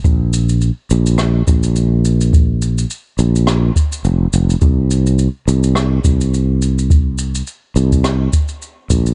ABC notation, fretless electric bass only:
X:1
M:4/4
L:1/8
Q:"Swing 16ths" 1/4=105
K:Bb
V:1 name="Fretless electric bass" clef=bass
B,,,2 z B,,,2 B,,,3- | B,,,2 z B,,,2 z F,,, F,,, | C,,2 z C,,2 C,,3- | C,,2 z C,,2 z2 B,,, |]